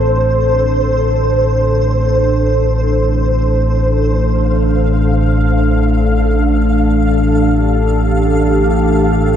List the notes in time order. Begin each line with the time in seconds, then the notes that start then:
Already playing: A1 A2 D4 A4 C5
4.18 A4 F5
6.59 G4
7.39 A#4